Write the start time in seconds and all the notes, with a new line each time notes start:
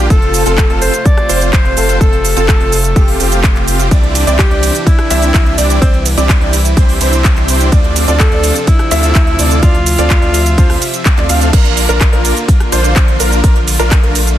Already playing: F4 G4
0.10 F1 C3 A3 C4 A4, kick, closed hi-hat, shaker
0.22 closed hi-hat
0.34 open hi-hat, shaker
0.46 F1 C4 F4 A4, closed hi-hat, shaker
0.58 kick, cross-stick, clap, closed hi-hat, shaker
0.70 F1 C4 F4 A4, closed hi-hat
0.82 C5, open hi-hat, shaker
0.94 closed hi-hat, shaker
1.06 D5, kick, closed hi-hat, shaker
1.17 cross-stick, closed hi-hat
1.29 F1 C4 F4 C5, open hi-hat, shaker
1.41 closed hi-hat, shaker
1.53 F1 C5, kick, clap, closed hi-hat, shaker
1.65 closed hi-hat
1.77 F1 C4 F4 A4, open hi-hat, shaker
1.89 closed hi-hat, shaker
2.01 F1 C4 F4 A4, kick, closed hi-hat, shaker
2.13 closed hi-hat
2.25 open hi-hat, shaker
2.37 F1 C4 F4 A4, closed hi-hat, shaker
2.48 kick, cross-stick, clap, closed hi-hat, shaker
2.60 F1 C4 F4 A4, closed hi-hat
2.72 open hi-hat, shaker
2.84 closed hi-hat, shaker
2.96 F1 C4 F4 G4, kick, closed hi-hat, shaker
3.08 open hi-hat
3.20 F1 C4 F4 G4, open hi-hat, shaker
3.32 closed hi-hat, shaker
3.44 kick, clap, closed hi-hat, shaker
3.56 clap, closed hi-hat
3.68 open hi-hat, shaker
3.79 closed hi-hat, shaker
3.91 C2 C3 E3 D4 E4 G4 D5, kick, closed hi-hat, ride, shaker
4.03 closed hi-hat
4.15 open hi-hat, ride, shaker
4.27 C2 C4 D4 E4 G4 D5, closed hi-hat, shaker
4.39 G4, kick, cross-stick, clap, closed hi-hat, ride, shaker
4.51 C2 C4 D4 E4 G4 D5, closed hi-hat
4.63 open hi-hat, ride, shaker
4.75 closed hi-hat, shaker
4.86 E4, kick, closed hi-hat, ride, shaker
4.99 cross-stick, closed hi-hat
5.10 C2 C4 D4 E4 G4 E5, open hi-hat, ride, shaker
5.22 closed hi-hat, shaker
5.34 C2, kick, clap, closed hi-hat, ride, shaker
5.46 closed hi-hat
5.58 C2 C4 D4 E4 G4 D5, open hi-hat, ride, shaker
5.70 closed hi-hat, shaker
5.81 C2 C4 D4 E4 D5, kick, closed hi-hat, ride, shaker
5.94 closed hi-hat
6.06 open hi-hat, ride, shaker
6.18 C2 C4 D4 E4 G4 D5, closed hi-hat, shaker
6.29 kick, cross-stick, clap, closed hi-hat, ride, shaker
6.41 C2 C4 D4 E4 G4 D5, closed hi-hat
6.53 open hi-hat, ride, shaker
6.65 closed hi-hat, shaker
6.77 C2 C4 D4 E4 G4 C5, kick, closed hi-hat, ride, shaker
6.89 open hi-hat
7.01 C2 C4 D4 E4 G4 C5, open hi-hat, ride, shaker
7.13 closed hi-hat, shaker
7.25 kick, clap, closed hi-hat, ride, shaker
7.37 clap, closed hi-hat
7.48 open hi-hat, ride, shaker
7.60 closed hi-hat, shaker
7.72 D2 F3 C4 D4 F4 D5, kick, closed hi-hat, ride, shaker
7.84 closed hi-hat
7.96 open hi-hat, ride, shaker
8.08 D2 C4 D4 F4 A4 D5, closed hi-hat, shaker
8.20 A4, kick, cross-stick, clap, closed hi-hat, ride, shaker
8.32 D2 C4 D4 F4 A4 D5, closed hi-hat
8.44 open hi-hat, ride, shaker
8.55 closed hi-hat, shaker
8.67 E4, kick, closed hi-hat, ride, shaker
8.79 cross-stick, closed hi-hat
8.91 D2 C4 D4 F4 A4 E5, open hi-hat, ride, shaker
9.03 closed hi-hat, shaker
9.15 D2 C4 F4 A4 E5, kick, clap, closed hi-hat, ride, shaker
9.27 closed hi-hat
9.39 D2 C4 D4 F4 A4 D5, open hi-hat, ride, shaker
9.51 closed hi-hat, shaker
9.63 D2 C4 D4 F4 A4 D5 E5, kick, closed hi-hat, ride, shaker
9.75 closed hi-hat
9.86 open hi-hat, ride, shaker
9.98 D2 C4 D4 F4 A4 D5, closed hi-hat, shaker
10.10 kick, cross-stick, clap, closed hi-hat, ride, shaker
10.22 D2 C4 D4 F4 A4 D5, closed hi-hat
10.34 open hi-hat, ride, shaker
10.46 closed hi-hat, shaker
10.58 D2 C4 D4 F4 A4 C5, kick, closed hi-hat, ride, shaker
10.70 cross-stick, open hi-hat
10.82 open hi-hat, ride, shaker
10.94 closed hi-hat, shaker
11.06 kick, clap, closed hi-hat, ride, shaker
11.17 D2 C4 D4 F4 A4 D5, clap, closed hi-hat
11.29 D2 C4 D4 F4 A4 F5, open hi-hat, ride, shaker
11.41 closed hi-hat, shaker
11.53 A#1 D3 A#3 D4 F4 A#4, kick, closed hi-hat, ride, crash, shaker
11.65 closed hi-hat
11.77 open hi-hat, ride, shaker
11.89 A#1 D4 F4 A#4, closed hi-hat, shaker
12.01 kick, cross-stick, clap, closed hi-hat, ride, shaker
12.13 A#1 D4 F4 A#4, closed hi-hat
12.25 open hi-hat, ride, shaker
12.37 closed hi-hat, shaker
12.48 kick, closed hi-hat, ride, shaker
12.60 cross-stick, closed hi-hat
12.72 A#1 D4 F4 C5, open hi-hat, ride, shaker
12.84 closed hi-hat, shaker
12.96 A#1, kick, clap, closed hi-hat, ride, shaker
13.08 closed hi-hat
13.20 A#1 D4 F4 A#4, open hi-hat, ride, shaker
13.32 closed hi-hat, shaker
13.44 A#1 A3 D4 F4 A#4, kick, closed hi-hat, ride, shaker
13.56 closed hi-hat
13.68 open hi-hat, ride, shaker
13.79 A#1 D4 F4 A#4, closed hi-hat, shaker
13.91 kick, cross-stick, clap, closed hi-hat, ride, shaker
14.03 A#1 D4 F4 A#4, closed hi-hat
14.15 open hi-hat, ride, shaker
14.27 closed hi-hat, shaker